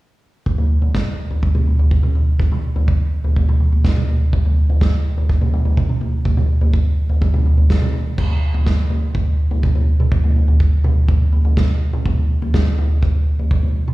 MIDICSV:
0, 0, Header, 1, 2, 480
1, 0, Start_track
1, 0, Tempo, 483092
1, 465, Time_signature, 4, 2, 24, 8
1, 13850, End_track
2, 0, Start_track
2, 0, Title_t, "Drums"
2, 458, Note_on_c, 9, 43, 58
2, 460, Note_on_c, 9, 36, 68
2, 558, Note_off_c, 9, 43, 0
2, 559, Note_off_c, 9, 36, 0
2, 579, Note_on_c, 9, 43, 55
2, 678, Note_off_c, 9, 43, 0
2, 814, Note_on_c, 9, 43, 63
2, 913, Note_off_c, 9, 43, 0
2, 939, Note_on_c, 9, 38, 54
2, 940, Note_on_c, 9, 36, 83
2, 1038, Note_off_c, 9, 38, 0
2, 1040, Note_off_c, 9, 36, 0
2, 1299, Note_on_c, 9, 43, 58
2, 1398, Note_off_c, 9, 43, 0
2, 1415, Note_on_c, 9, 43, 58
2, 1419, Note_on_c, 9, 36, 74
2, 1515, Note_off_c, 9, 43, 0
2, 1519, Note_off_c, 9, 36, 0
2, 1539, Note_on_c, 9, 43, 65
2, 1539, Note_on_c, 9, 47, 58
2, 1638, Note_off_c, 9, 43, 0
2, 1638, Note_off_c, 9, 47, 0
2, 1659, Note_on_c, 9, 43, 51
2, 1758, Note_off_c, 9, 43, 0
2, 1779, Note_on_c, 9, 43, 63
2, 1879, Note_off_c, 9, 43, 0
2, 1898, Note_on_c, 9, 47, 57
2, 1900, Note_on_c, 9, 36, 76
2, 1997, Note_off_c, 9, 47, 0
2, 2000, Note_off_c, 9, 36, 0
2, 2017, Note_on_c, 9, 47, 52
2, 2116, Note_off_c, 9, 47, 0
2, 2138, Note_on_c, 9, 43, 57
2, 2237, Note_off_c, 9, 43, 0
2, 2376, Note_on_c, 9, 43, 61
2, 2380, Note_on_c, 9, 36, 74
2, 2476, Note_off_c, 9, 43, 0
2, 2480, Note_off_c, 9, 36, 0
2, 2502, Note_on_c, 9, 43, 59
2, 2502, Note_on_c, 9, 47, 56
2, 2602, Note_off_c, 9, 43, 0
2, 2602, Note_off_c, 9, 47, 0
2, 2741, Note_on_c, 9, 43, 67
2, 2841, Note_off_c, 9, 43, 0
2, 2861, Note_on_c, 9, 36, 89
2, 2961, Note_off_c, 9, 36, 0
2, 3222, Note_on_c, 9, 43, 55
2, 3321, Note_off_c, 9, 43, 0
2, 3343, Note_on_c, 9, 36, 69
2, 3343, Note_on_c, 9, 43, 61
2, 3442, Note_off_c, 9, 36, 0
2, 3443, Note_off_c, 9, 43, 0
2, 3463, Note_on_c, 9, 43, 58
2, 3463, Note_on_c, 9, 47, 60
2, 3562, Note_off_c, 9, 43, 0
2, 3562, Note_off_c, 9, 47, 0
2, 3579, Note_on_c, 9, 43, 53
2, 3679, Note_off_c, 9, 43, 0
2, 3701, Note_on_c, 9, 43, 59
2, 3801, Note_off_c, 9, 43, 0
2, 3820, Note_on_c, 9, 38, 59
2, 3821, Note_on_c, 9, 36, 83
2, 3919, Note_off_c, 9, 38, 0
2, 3921, Note_off_c, 9, 36, 0
2, 3941, Note_on_c, 9, 47, 61
2, 4040, Note_off_c, 9, 47, 0
2, 4061, Note_on_c, 9, 43, 56
2, 4160, Note_off_c, 9, 43, 0
2, 4303, Note_on_c, 9, 36, 76
2, 4303, Note_on_c, 9, 43, 66
2, 4402, Note_off_c, 9, 36, 0
2, 4402, Note_off_c, 9, 43, 0
2, 4425, Note_on_c, 9, 43, 57
2, 4524, Note_off_c, 9, 43, 0
2, 4666, Note_on_c, 9, 43, 66
2, 4765, Note_off_c, 9, 43, 0
2, 4782, Note_on_c, 9, 36, 83
2, 4783, Note_on_c, 9, 38, 60
2, 4882, Note_off_c, 9, 36, 0
2, 4882, Note_off_c, 9, 38, 0
2, 5143, Note_on_c, 9, 43, 55
2, 5242, Note_off_c, 9, 43, 0
2, 5261, Note_on_c, 9, 36, 79
2, 5263, Note_on_c, 9, 43, 65
2, 5360, Note_off_c, 9, 36, 0
2, 5362, Note_off_c, 9, 43, 0
2, 5379, Note_on_c, 9, 43, 66
2, 5379, Note_on_c, 9, 47, 60
2, 5479, Note_off_c, 9, 43, 0
2, 5479, Note_off_c, 9, 47, 0
2, 5501, Note_on_c, 9, 43, 64
2, 5600, Note_off_c, 9, 43, 0
2, 5617, Note_on_c, 9, 43, 67
2, 5716, Note_off_c, 9, 43, 0
2, 5736, Note_on_c, 9, 47, 55
2, 5737, Note_on_c, 9, 36, 75
2, 5836, Note_off_c, 9, 36, 0
2, 5836, Note_off_c, 9, 47, 0
2, 5854, Note_on_c, 9, 47, 55
2, 5954, Note_off_c, 9, 47, 0
2, 5972, Note_on_c, 9, 43, 64
2, 6071, Note_off_c, 9, 43, 0
2, 6211, Note_on_c, 9, 43, 66
2, 6213, Note_on_c, 9, 36, 83
2, 6310, Note_off_c, 9, 43, 0
2, 6313, Note_off_c, 9, 36, 0
2, 6331, Note_on_c, 9, 43, 60
2, 6331, Note_on_c, 9, 47, 54
2, 6430, Note_off_c, 9, 43, 0
2, 6430, Note_off_c, 9, 47, 0
2, 6570, Note_on_c, 9, 43, 72
2, 6669, Note_off_c, 9, 43, 0
2, 6692, Note_on_c, 9, 36, 82
2, 6791, Note_off_c, 9, 36, 0
2, 7049, Note_on_c, 9, 43, 63
2, 7148, Note_off_c, 9, 43, 0
2, 7168, Note_on_c, 9, 43, 67
2, 7171, Note_on_c, 9, 36, 80
2, 7268, Note_off_c, 9, 43, 0
2, 7271, Note_off_c, 9, 36, 0
2, 7291, Note_on_c, 9, 43, 69
2, 7291, Note_on_c, 9, 47, 66
2, 7390, Note_off_c, 9, 43, 0
2, 7390, Note_off_c, 9, 47, 0
2, 7410, Note_on_c, 9, 43, 63
2, 7510, Note_off_c, 9, 43, 0
2, 7528, Note_on_c, 9, 43, 62
2, 7627, Note_off_c, 9, 43, 0
2, 7651, Note_on_c, 9, 36, 83
2, 7651, Note_on_c, 9, 38, 59
2, 7750, Note_off_c, 9, 36, 0
2, 7750, Note_off_c, 9, 38, 0
2, 7767, Note_on_c, 9, 47, 60
2, 7867, Note_off_c, 9, 47, 0
2, 7885, Note_on_c, 9, 43, 61
2, 7984, Note_off_c, 9, 43, 0
2, 8127, Note_on_c, 9, 43, 63
2, 8127, Note_on_c, 9, 49, 79
2, 8129, Note_on_c, 9, 36, 87
2, 8226, Note_off_c, 9, 43, 0
2, 8226, Note_off_c, 9, 49, 0
2, 8228, Note_off_c, 9, 36, 0
2, 8489, Note_on_c, 9, 43, 82
2, 8588, Note_off_c, 9, 43, 0
2, 8606, Note_on_c, 9, 38, 63
2, 8610, Note_on_c, 9, 36, 88
2, 8706, Note_off_c, 9, 38, 0
2, 8709, Note_off_c, 9, 36, 0
2, 8845, Note_on_c, 9, 43, 70
2, 8944, Note_off_c, 9, 43, 0
2, 9086, Note_on_c, 9, 43, 66
2, 9089, Note_on_c, 9, 36, 86
2, 9186, Note_off_c, 9, 43, 0
2, 9189, Note_off_c, 9, 36, 0
2, 9450, Note_on_c, 9, 43, 68
2, 9549, Note_off_c, 9, 43, 0
2, 9569, Note_on_c, 9, 47, 61
2, 9571, Note_on_c, 9, 36, 83
2, 9669, Note_off_c, 9, 47, 0
2, 9671, Note_off_c, 9, 36, 0
2, 9691, Note_on_c, 9, 43, 66
2, 9791, Note_off_c, 9, 43, 0
2, 9934, Note_on_c, 9, 47, 66
2, 10034, Note_off_c, 9, 47, 0
2, 10052, Note_on_c, 9, 36, 95
2, 10052, Note_on_c, 9, 43, 66
2, 10152, Note_off_c, 9, 36, 0
2, 10152, Note_off_c, 9, 43, 0
2, 10174, Note_on_c, 9, 43, 63
2, 10273, Note_off_c, 9, 43, 0
2, 10295, Note_on_c, 9, 43, 60
2, 10395, Note_off_c, 9, 43, 0
2, 10413, Note_on_c, 9, 43, 78
2, 10513, Note_off_c, 9, 43, 0
2, 10533, Note_on_c, 9, 36, 89
2, 10633, Note_off_c, 9, 36, 0
2, 10773, Note_on_c, 9, 43, 77
2, 10773, Note_on_c, 9, 47, 73
2, 10872, Note_off_c, 9, 43, 0
2, 10872, Note_off_c, 9, 47, 0
2, 11012, Note_on_c, 9, 43, 66
2, 11014, Note_on_c, 9, 36, 91
2, 11112, Note_off_c, 9, 43, 0
2, 11113, Note_off_c, 9, 36, 0
2, 11253, Note_on_c, 9, 43, 59
2, 11352, Note_off_c, 9, 43, 0
2, 11375, Note_on_c, 9, 43, 70
2, 11475, Note_off_c, 9, 43, 0
2, 11496, Note_on_c, 9, 36, 92
2, 11496, Note_on_c, 9, 38, 58
2, 11496, Note_on_c, 9, 47, 60
2, 11595, Note_off_c, 9, 38, 0
2, 11595, Note_off_c, 9, 47, 0
2, 11596, Note_off_c, 9, 36, 0
2, 11857, Note_on_c, 9, 47, 61
2, 11956, Note_off_c, 9, 47, 0
2, 11978, Note_on_c, 9, 36, 89
2, 11979, Note_on_c, 9, 43, 74
2, 12078, Note_off_c, 9, 36, 0
2, 12078, Note_off_c, 9, 43, 0
2, 12342, Note_on_c, 9, 43, 81
2, 12442, Note_off_c, 9, 43, 0
2, 12460, Note_on_c, 9, 36, 97
2, 12462, Note_on_c, 9, 38, 66
2, 12560, Note_off_c, 9, 36, 0
2, 12561, Note_off_c, 9, 38, 0
2, 12702, Note_on_c, 9, 43, 75
2, 12802, Note_off_c, 9, 43, 0
2, 12942, Note_on_c, 9, 36, 90
2, 12944, Note_on_c, 9, 43, 63
2, 13042, Note_off_c, 9, 36, 0
2, 13044, Note_off_c, 9, 43, 0
2, 13307, Note_on_c, 9, 43, 60
2, 13406, Note_off_c, 9, 43, 0
2, 13422, Note_on_c, 9, 47, 67
2, 13423, Note_on_c, 9, 36, 91
2, 13521, Note_off_c, 9, 47, 0
2, 13523, Note_off_c, 9, 36, 0
2, 13542, Note_on_c, 9, 43, 60
2, 13642, Note_off_c, 9, 43, 0
2, 13789, Note_on_c, 9, 47, 67
2, 13850, Note_off_c, 9, 47, 0
2, 13850, End_track
0, 0, End_of_file